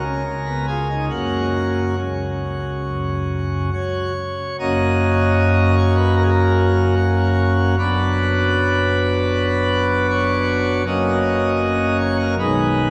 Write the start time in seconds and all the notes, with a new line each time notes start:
Already playing: C#2 C#3 A#4
0.04 C#4
0.25 C#2 C#3
0.45 B3
0.67 F4 G#4
0.89 D#4
1.10 F#2 F#3 A#3 C#4 F#4
1.98 C#2 C#3
2.83 F#1 F#2
3.74 C#5
4.59 F#1 F#2 F#3 A#3 C#4 D#5
5.77 C#5
5.97 B4
6.16 A#4
6.23 G#4
6.31 A#4
6.96 F#4
7.79 F#1 F#2 F#3 B3 D4 B4
10.11 C#5
10.86 F#1 F#2 F#3 A#3 C#4 D#5
12.01 C#5
12.20 A#4
12.39 B1 B2 D#3 G#3 D#4 B4